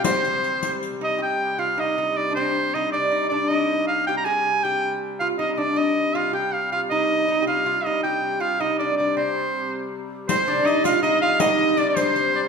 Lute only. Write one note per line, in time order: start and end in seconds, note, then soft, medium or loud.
0.05 0.77 C4 medium
1.01 1.20 D#4 medium
1.19 1.58 G4 medium
1.58 1.77 F4 medium
1.78 1.97 D#4 medium
1.98 2.30 D#4 medium
2.31 2.35 D4 medium
2.37 2.75 C4 medium
2.75 2.93 D#4 medium
2.94 3.11 D4 medium
3.12 3.31 D#4 medium
3.32 3.50 D4 medium
3.50 4.08 D#4 medium
4.09 4.25 G4 medium
4.26 4.64 G#4 medium
4.65 4.94 G4 medium
5.21 5.39 F4 medium
5.39 5.57 D#4 medium
5.58 5.76 D4 medium
5.76 6.14 D#4 medium
6.15 6.34 F4 medium
6.33 6.72 G4 medium
6.73 6.91 F4 medium
6.91 7.27 D#4 medium
7.28 7.43 D#4 medium
7.42 7.47 G4 medium
7.47 7.65 F4 medium
7.66 7.85 F4 medium
7.86 8.05 D#4 medium
8.04 8.43 G4 medium
8.40 8.60 F4 medium
8.60 8.80 D#4 medium
8.80 8.99 D4 medium
9.00 9.18 D4 medium
9.17 9.88 C4 medium
10.29 10.48 C4 medium
10.48 10.65 D4 medium
10.65 10.84 D#4 medium
10.84 11.02 F4 loud
11.03 11.22 D#4 medium
11.23 11.40 F4 medium
11.40 11.75 D#4 medium
11.78 11.98 D4 medium
11.97 12.48 C4 medium